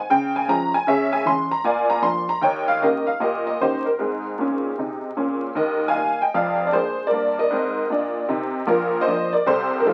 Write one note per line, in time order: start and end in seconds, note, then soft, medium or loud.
0.10 0.43 C#3 medium
0.10 0.36 G5 loud
0.36 0.49 G#5 medium
0.48 0.70 F3 soft
0.48 0.70 G#3 soft
0.48 0.71 C#4 medium
0.48 0.75 A#5 loud
0.74 0.88 G#5 loud
0.87 1.20 C#3 medium
0.87 1.12 G#4 medium
0.87 1.12 C#5 medium
0.87 1.14 E5 loud
1.13 1.26 G#5 loud
1.25 1.47 E3 soft
1.25 1.47 G#3 soft
1.25 1.48 C#4 soft
1.25 1.53 C6 loud
1.51 1.65 A#5 medium
1.64 1.98 A#2 medium
1.64 1.90 D5 medium
1.64 1.90 F5 medium
1.64 1.91 G#5 medium
1.90 2.04 A#5 medium
2.02 2.24 F3 medium
2.02 2.24 A#3 soft
2.02 2.25 D4 soft
2.02 2.30 C6 loud
2.29 2.43 A#5 medium
2.41 2.76 D#2 medium
2.41 2.68 C#5 medium
2.41 2.68 D#5 medium
2.41 2.69 G5 loud
2.68 2.82 F5 loud
2.81 3.03 D#3 medium
2.81 3.04 A#3 soft
2.81 3.04 C#4 soft
2.81 3.07 G4 medium
2.81 3.07 A#4 medium
2.81 3.09 D#5 medium
3.07 3.21 F5 medium
3.20 3.54 A#2 medium
3.20 3.46 G4 medium
3.20 3.46 A#4 medium
3.20 3.45 D#5 medium
3.47 3.61 D#5 medium
3.60 3.82 D#3 soft
3.60 3.82 A#3 soft
3.60 3.82 C#4 soft
3.60 3.86 D#4 medium
3.60 3.86 G4 medium
3.60 3.87 C5 medium
3.86 4.00 A#4 medium
3.99 4.31 G#2 medium
3.99 5.39 C4 soft
3.99 4.78 D#4 soft
3.99 5.43 G#4 medium
4.38 4.70 A#2 medium
4.38 4.71 C#4 medium
4.78 5.09 C3 medium
4.78 5.10 D#4 medium
5.17 5.48 A#2 medium
5.17 5.49 C#4 medium
5.55 5.89 D#2 medium
5.55 5.89 D#3 medium
5.55 5.87 A#4 medium
5.55 5.89 D#5 medium
5.88 6.19 F5 medium
5.88 6.21 G#5 loud
5.94 6.16 G3 soft
5.94 6.16 A#3 soft
5.94 6.17 D#4 soft
6.22 6.35 D#5 medium
6.22 6.35 G5 medium
6.34 6.68 F1 medium
6.34 6.68 F2 medium
6.34 6.65 D5 medium
6.34 6.67 F5 medium
6.67 6.74 D5 medium
6.72 6.94 G#3 soft
6.72 6.94 A#3 soft
6.72 6.95 D4 soft
6.72 7.04 G#4 medium
6.72 7.06 C5 medium
7.07 7.37 A#4 medium
7.07 7.39 D5 medium
7.11 7.43 G2 medium
7.11 7.44 A#3 medium
7.39 8.52 A#4 medium
7.39 8.56 D#5 medium
7.50 7.82 G#2 medium
7.50 7.83 C4 medium
7.90 8.22 A#2 medium
7.90 8.23 D4 medium
8.29 8.60 C3 medium
8.29 8.61 D#4 medium
8.67 9.01 A#1 medium
8.67 9.01 A#2 medium
8.67 8.99 F4 medium
8.67 9.01 A#4 medium
9.01 9.32 C5 medium
9.01 9.34 D#5 loud
9.07 9.29 F3 soft
9.07 9.29 A#3 medium
9.07 9.29 D4 medium
9.33 9.46 A#4 medium
9.33 9.46 D5 medium
9.46 9.80 C2 medium
9.46 9.80 C3 medium
9.46 9.78 A4 medium
9.46 9.80 C5 loud
9.80 9.86 A#4 medium
9.85 9.93 F3 soft
9.85 9.93 A3 medium
9.85 9.93 D#4 medium
9.85 9.93 F4 medium
9.85 9.93 A4 medium